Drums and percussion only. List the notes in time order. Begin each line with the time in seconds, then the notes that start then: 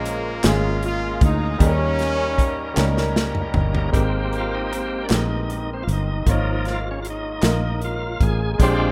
0.06 closed hi-hat
0.43 snare, clap, closed hi-hat
0.83 closed hi-hat
1.21 kick, closed hi-hat
1.60 kick, closed hi-hat
1.99 snare, closed hi-hat
2.38 kick, closed hi-hat
2.77 snare, clap
2.97 snare
3.16 snare
3.35 mid tom
3.54 floor tom
3.75 floor tom
3.94 kick, closed hi-hat
4.33 closed hi-hat
4.73 closed hi-hat
5.10 snare, clap, closed hi-hat
5.50 closed hi-hat
5.88 closed hi-hat
6.27 kick, closed hi-hat
6.65 snare, closed hi-hat
7.05 closed hi-hat
7.42 snare, clap, closed hi-hat
7.82 closed hi-hat
8.21 kick, closed hi-hat
8.60 kick, closed hi-hat